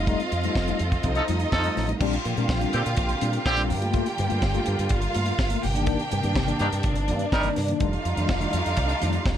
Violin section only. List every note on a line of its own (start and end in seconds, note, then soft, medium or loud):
0.00 1.01 F4 medium
0.00 1.01 F5 medium
1.04 1.99 D#4 medium
1.04 1.99 D#5 medium
2.01 3.67 F4 medium
2.01 3.67 F5 medium
3.70 4.88 G4 medium
3.70 4.88 G5 medium
4.91 5.62 F4 medium
4.91 5.62 F5 medium
5.63 6.82 G4 medium
5.63 6.82 G5 medium
6.84 7.79 D4 medium
6.84 7.79 D5 medium
7.81 9.38 F4 medium
7.81 9.38 F5 medium